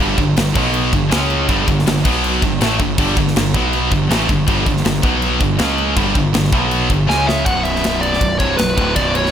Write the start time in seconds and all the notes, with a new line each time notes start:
Already playing: G2
0.00 G1 D3 G3
0.17 G1 G2 D3, kick, crash
0.36 G1 G2 D3, snare, crash
0.48 snare
0.54 B1 B2 F#3 B3, kick, crash
0.74 crash
0.93 G1 G2 D3, kick, crash
1.11 C#2 C#3 G#3 C#4, snare, crash
1.30 crash
1.48 G1 G2 D3 G3, kick, crash
1.68 G1 G2 D3, kick, crash
1.79 snare
1.86 G1 G2 D3, snare, crash
1.97 snare
2.04 B1 B2 F#3 B3, kick, crash
2.24 crash
2.42 G1 G2 D3, kick, crash
2.60 A1 A2 E3 A3, snare, crash
2.79 G1 G2 D3, kick, crash
2.98 G1 G2 D3 G3, kick, crash
3.17 G1 G2 D3, kick, crash
3.28 snare
3.35 G1 G2 D3, snare, crash
3.54 B1 B2 F#3 B3, kick, crash
3.73 crash
3.92 G1 G2 D3, kick, crash
4.09 A1 A2 E3 A3, snare, crash
4.28 G1 G2 D3, kick, crash
4.47 G1 G2 D3 G3, kick, crash
4.65 G1 G2 D3, kick, crash
4.77 snare
4.84 G1 G2 D3, snare, crash
4.95 snare
5.02 B1 B2 F#3 B3, kick, crash
5.22 crash
5.40 G1 G2 D3, kick, crash
5.59 C#2 C#3 G#3 C#4, snare, crash
5.78 crash
5.96 G1 G2 D3 G3, kick, crash
6.15 G1 G2 D3, kick, crash
6.34 G1 G2 D3, snare, crash
6.44 snare
6.52 B1 B2 F#3 B3, kick, crash
6.71 crash
6.90 G1 G2 D3, kick, crash
7.07 C#2 C#3 G#3 C#4 G#5, snare
7.27 E5, snare
7.45 B0 B1 F#2 B2 F#5, kick, ride
7.63 E5, ride
7.75 snare
7.84 snare, ride
8.01 D5, ride
8.13 snare
8.20 B0 B1 F#2, kick, ride
8.39 C1 C2 G2 C3 C#5, kick, ride
8.57 B0 B1 F#2 B4, snare, ride
8.77 D1 D2 A2 D3, kick, ride
8.96 B0 B1 F#2 B2 D5, kick, ride
9.15 C#5, ride
9.26 snare